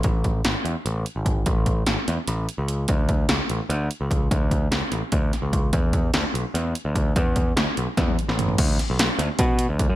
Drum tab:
CC |--------------|--------------|--------------|--------------|
HH |x-x-x-x-x-x-x-|x-x-x-x-x-x-x-|x-x-x-x-x-x-x-|x-x-x-x-x-x-x-|
SD |----o---------|----o-o-------|----o---------|----o-o---o---|
T1 |--------------|--------------|--------------|--------------|
FT |--------------|--------------|--------------|--------------|
BD |o-o---------o-|o-o-----------|o-o---------o-|o-o-----o---o-|

CC |--------------|--------------|x-------------|
HH |x-x-x-x-x-x-x-|x-x-x-x-x-x-x-|x-x-x-x-x-x-x-|
SD |----o---o-----|----o---o--o--|--o-o-o-------|
T1 |--------------|---------o----|--------------|
FT |--------------|------------oo|--------------|
BD |o-o---------o-|o-o-----o-----|o-------o---o-|